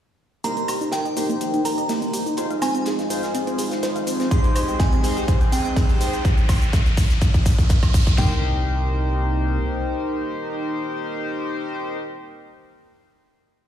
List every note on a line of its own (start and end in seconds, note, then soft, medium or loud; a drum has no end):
0.44 0.63 C2 loud
0.44 2.36 A#3 medium
0.44 0.53 A#3 medium
0.44 6.21 D#4 medium
0.44 1.14 D#4 medium
0.44 2.36 G4 medium
0.44 1.14 G4 medium
0.44 1.14 A#4 medium
0.44 6.21 C5 medium
0.44 1.14 C5 medium
0.44 0.88 A#5 medium
0.44 closed hi-hat medium
0.44 riser medium
0.44 shaker soft
0.57 0.65 A#3 medium
0.57 closed hi-hat soft
0.57 shaker soft
0.68 0.78 C2 medium
0.68 0.77 G4 medium
0.68 closed hi-hat medium
0.68 open hi-hat loud
0.68 high woodblock medium
0.68 shaker medium
0.81 0.86 D#4 medium
0.81 closed hi-hat soft
0.81 shaker soft
0.92 1.03 G1 medium
0.92 1.01 A#4 loud
0.92 1.56 G5 medium
0.92 snare loud
0.92 closed hi-hat medium
0.92 shaker soft
1.05 1.16 D#5 medium
1.05 closed hi-hat soft
1.05 shaker soft
1.17 1.36 C2 loud
1.17 1.26 A#3 medium
1.17 2.35 D#4 medium
1.17 2.35 G4 medium
1.17 2.35 A#4 medium
1.17 2.35 C5 medium
1.17 closed hi-hat medium
1.17 open hi-hat loud
1.17 shaker medium
1.29 1.37 A#3 medium
1.29 closed hi-hat soft
1.29 shaker soft
1.41 1.60 A#1 loud
1.41 1.50 G4 medium
1.41 closed hi-hat medium
1.41 shaker soft
1.54 1.58 D#4 medium
1.54 closed hi-hat soft
1.54 shaker soft
1.65 1.75 A#1 medium
1.65 1.74 A#4 loud
1.65 2.53 A#5 medium
1.65 closed hi-hat medium
1.65 open hi-hat loud
1.65 shaker medium
1.78 1.89 D#5 medium
1.78 closed hi-hat soft
1.78 shaker soft
1.89 2.09 C2 medium
1.89 1.98 A#3 medium
1.89 snare loud
1.89 closed hi-hat medium
1.89 open hi-hat medium
1.89 shaker soft
2.02 2.10 A#3 medium
2.02 closed hi-hat soft
2.02 shaker soft
2.13 2.24 C2 loud
2.13 2.22 G4 medium
2.13 closed hi-hat medium
2.13 open hi-hat loud
2.13 shaker medium
2.26 2.31 D#4 medium
2.26 closed hi-hat soft
2.26 shaker soft
2.37 2.57 F1 medium
2.37 4.29 G#3 medium
2.37 3.08 D#4 medium
2.37 3.08 F4 medium
2.37 4.29 F4 medium
2.37 3.08 G#4 medium
2.37 3.08 C5 medium
2.37 2.47 C5 loud
2.37 closed hi-hat medium
2.37 shaker soft
2.50 2.61 F5 medium
2.50 closed hi-hat soft
2.50 shaker soft
2.62 2.72 F1 medium
2.62 2.71 C4 medium
2.62 4.22 G#5 medium
2.62 closed hi-hat medium
2.62 open hi-hat loud
2.62 high woodblock medium
2.62 shaker medium
2.75 2.83 C4 medium
2.75 closed hi-hat soft
2.75 shaker soft
2.86 3.05 F1 loud
2.86 2.95 G#4 medium
2.86 snare loud
2.86 closed hi-hat medium
2.86 shaker soft
2.99 3.04 F4 medium
2.99 snare soft
2.99 closed hi-hat soft
2.99 shaker soft
3.10 3.36 F1 medium
3.10 4.29 D#4 medium
3.10 4.29 F4 medium
3.10 4.29 G#4 medium
3.10 3.19 C5 loud
3.10 4.29 C5 medium
3.10 closed hi-hat medium
3.10 open hi-hat loud
3.10 shaker medium
3.23 3.34 F5 medium
3.23 snare medium
3.23 closed hi-hat soft
3.23 shaker soft
3.34 3.44 C2 medium
3.34 3.43 C4 medium
3.34 closed hi-hat medium
3.34 shaker soft
3.47 3.55 C4 medium
3.47 closed hi-hat soft
3.47 shaker soft
3.58 3.78 C2 medium
3.58 3.68 G#4 medium
3.58 closed hi-hat medium
3.58 open hi-hat loud
3.58 shaker medium
3.71 3.76 F4 medium
3.71 snare medium
3.71 closed hi-hat soft
3.71 shaker soft
3.83 4.02 G1 medium
3.83 3.92 C5 loud
3.83 snare loud
3.83 closed hi-hat medium
3.83 shaker soft
3.95 4.07 F5 medium
3.95 closed hi-hat soft
3.95 shaker soft
4.07 4.26 G1 medium
4.07 4.16 C4 medium
4.07 closed hi-hat medium
4.07 open hi-hat loud
4.07 shaker medium
4.20 4.28 C4 medium
4.20 snare medium
4.20 closed hi-hat soft
4.20 shaker soft
4.31 4.51 G#1 loud
4.31 6.23 G#3 medium
4.31 5.01 D#4 medium
4.31 5.01 G4 medium
4.31 5.01 G#4 medium
4.31 4.40 G#4 medium
4.31 5.01 C5 medium
4.31 4.75 C6 loud
4.31 kick loud
4.31 closed hi-hat medium
4.31 shaker soft
4.44 4.49 G4 medium
4.44 closed hi-hat soft
4.44 shaker soft
4.55 4.66 G#1 medium
4.55 4.64 C5 loud
4.55 closed hi-hat medium
4.55 open hi-hat loud
4.55 high woodblock medium
4.55 shaker medium
4.68 4.79 G5 medium
4.68 closed hi-hat soft
4.68 shaker soft
4.79 4.90 G#2 loud
4.79 4.89 C4 medium
4.79 5.43 G#5 medium
4.79 kick loud
4.79 snare loud
4.79 closed hi-hat medium
4.79 shaker soft
4.92 5.00 C4 medium
4.92 closed hi-hat soft
4.92 shaker soft
5.04 5.23 G#1 loud
5.04 6.22 D#4 medium
5.04 5.13 G#4 medium
5.04 6.22 G#4 medium
5.04 6.22 C5 medium
5.04 closed hi-hat medium
5.04 open hi-hat loud
5.04 shaker medium
5.17 5.21 G4 medium
5.17 shaker soft
5.28 5.47 D#1 loud
5.28 5.37 C5 loud
5.28 kick loud
5.28 closed hi-hat medium
5.28 shaker soft
5.41 5.52 G5 medium
5.41 closed hi-hat soft
5.41 shaker soft
5.52 5.62 D#1 loud
5.52 5.61 C4 medium
5.52 6.25 G5 medium
5.52 closed hi-hat medium
5.52 open hi-hat loud
5.52 shaker medium
5.65 5.73 C4 medium
5.65 closed hi-hat soft
5.65 shaker soft
5.76 5.96 G#1 medium
5.76 5.85 G#4 medium
5.76 kick loud
5.76 snare loud
5.76 closed hi-hat medium
5.76 open hi-hat medium
5.76 shaker soft
5.89 5.94 G4 medium
5.89 closed hi-hat soft
5.89 shaker soft
6.01 6.11 G#1 loud
6.01 6.09 C5 loud
6.01 closed hi-hat medium
6.01 open hi-hat loud
6.01 shaker medium
6.13 6.24 G5 medium
6.13 closed hi-hat soft
6.13 shaker soft
6.25 kick loud
6.25 closed hi-hat medium
6.25 shaker soft
6.38 closed hi-hat soft
6.38 shaker soft
6.49 kick loud
6.49 closed hi-hat medium
6.49 open hi-hat loud
6.49 high woodblock medium
6.49 shaker medium
6.62 closed hi-hat soft
6.62 shaker soft
6.73 kick loud
6.73 snare loud
6.73 closed hi-hat medium
6.73 shaker soft
6.86 snare soft
6.86 closed hi-hat soft
6.86 shaker soft
6.97 kick loud
6.97 closed hi-hat medium
6.97 open hi-hat loud
6.97 shaker medium
7.09 snare medium
7.09 closed hi-hat soft
7.09 shaker soft
7.21 kick loud
7.21 closed hi-hat medium
7.21 shaker soft
7.34 kick medium
7.34 closed hi-hat soft
7.34 shaker soft
7.46 kick loud
7.46 closed hi-hat medium
7.46 open hi-hat loud
7.46 shaker medium
7.59 kick loud
7.59 snare medium
7.59 closed hi-hat soft
7.59 shaker soft
7.69 kick loud
7.69 snare loud
7.69 closed hi-hat medium
7.69 shaker soft
7.83 kick medium
7.83 closed hi-hat soft
7.83 high woodblock medium
7.83 shaker soft
7.94 kick loud
7.94 closed hi-hat medium
7.94 open hi-hat loud
7.94 shaker medium
8.07 kick medium
8.07 snare medium
8.07 shaker soft
8.18 9.60 C2 loud
8.18 8.41 A#3 medium
8.18 11.97 A#3 medium
8.18 11.97 D#4 medium
8.18 11.97 G4 medium
8.18 11.97 A#4 medium
8.18 11.97 C5 medium
8.18 11.97 C5 loud
8.18 11.97 G5 medium
8.18 snare loud
8.18 floor tom loud
8.18 open hi-hat medium